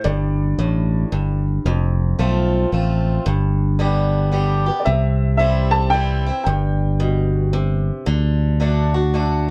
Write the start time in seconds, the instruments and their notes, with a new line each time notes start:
0.04 fingered electric bass G1, steel-string acoustic guitar G2, upright piano D5
0.58 fingered electric bass A1, steel-string acoustic guitar A2
1.12 fingered electric bass G1, steel-string acoustic guitar G2
1.65 fingered electric bass F1, steel-string acoustic guitar F2
2.19 fingered electric bass B1, steel-string acoustic guitar F3 A3 C4 F4
2.72 fingered electric bass A1, steel-string acoustic guitar F3 A3 C4 F4
3.26 fingered electric bass G1, steel-string acoustic guitar G2
3.79 steel-string acoustic guitar D3 G3 B3 G4
4.32 steel-string acoustic guitar D3 G3 B3 G4
4.66 steel-string acoustic guitar B3 G4
4.80 upright piano D5
4.85 fingered electric bass C2, steel-string acoustic guitar C3, upright piano E5
5.37 steel-string acoustic guitar E3 G3 C4 E4, upright piano E5
5.71 upright piano A5
5.90 steel-string acoustic guitar E3 G3 C4, upright piano G5
5.94 steel-string acoustic guitar E4
6.26 steel-string acoustic guitar C4 E4
6.44 fingered electric bass G1, steel-string acoustic guitar G2, upright piano G5
7.00 steel-string acoustic guitar B2
7.53 steel-string acoustic guitar C3
8.06 fingered electric bass D2, steel-string acoustic guitar D3
8.60 steel-string acoustic guitar D3 A3 D4 F#4
8.94 steel-string acoustic guitar D4 F#4
9.14 steel-string acoustic guitar D3 A3 D4 F#4